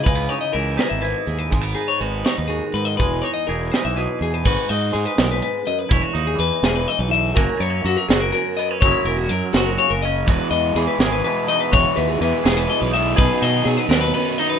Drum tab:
CC |------|------|------|x-----|
HH |xxxxxx|xxxxxx|xxxxxx|-xxxxx|
SD |---o--|---o--|---o--|---o--|
BD |o-----|o-----|o-----|o-----|

CC |------|------|------|------|
HH |xxxxxx|xxxxxx|xxxxxx|xxxxxx|
SD |---o--|---o--|---o--|---o--|
BD |o-----|o-----|o-----|o-----|

CC |------|------|
HH |xxxxxx|xxxxxx|
SD |---o--|---o--|
BD |o-----|o-----|